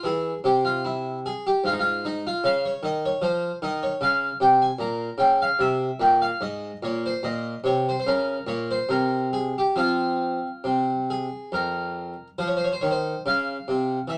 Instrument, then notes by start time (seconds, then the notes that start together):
harpsichord
0.03 E3 G#4
0.44 C3 G4
0.65 F4
0.85 E4
1.26 G#4
1.47 G4
1.64 G#2 F4
1.72 D#4
1.79 F4
2.05 D#4
2.27 F4
2.44 C#3 F5
2.65 C#5
2.83 D#3 D#5
3.05 C#5
3.22 F3 C5
3.62 D#3 D#5
3.83 C#5
4.01 C#3 F5
4.40 C3 G5
4.62 G#5
4.79 A#2 A#5
5.18 C#3 G5
5.42 F5
5.59 C3 E5
6.00 A#2 G5
6.22 F5
6.41 G#2 D#5
6.83 A#2 C#5
7.06 C5
7.23 A#2 D#5
7.64 C3 C#5
7.89 C5
8.00 C5
8.07 C#3 A#4
8.47 A#2 C#5
8.71 C5
8.89 C3 A#4
9.33 G#4
9.58 G4
9.76 F3 C4 F4
10.64 C3
11.10 G#4
11.52 F2 A#4
12.38 F3 C5
12.48 C#5
12.57 C5
12.64 C#5
12.72 C5
12.81 D#3 C#5
12.91 C5
13.26 C#3 F5
13.68 C3
14.08 E3 E5